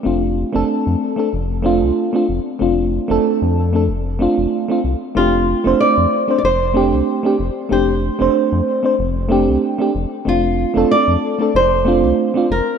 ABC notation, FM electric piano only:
X:1
M:4/4
L:1/16
Q:"Swing 16ths" 1/4=94
K:F
V:1 name="FM electric piano"
[A,CDF]3 [A,CDA]4 [A,CDA] z2 [A,CDF]3 [A,CDF] z2 | [A,CDF]3 [A,CDA]4 [A,CDA] z2 [A,CDF]3 [A,CDF] z2 | [A,CDG]3 [A,CDc]4 [A,CDc] z2 [A,CDG]3 [A,CDG] z2 | [A,CDG]3 [A,CDc]4 [A,CDc] z2 [A,CDG]3 [A,CDG] z2 |
[A,CDF]3 [A,CDA]4 [A,CDA] z2 [A,CDF]3 [A,CDF] z2 |]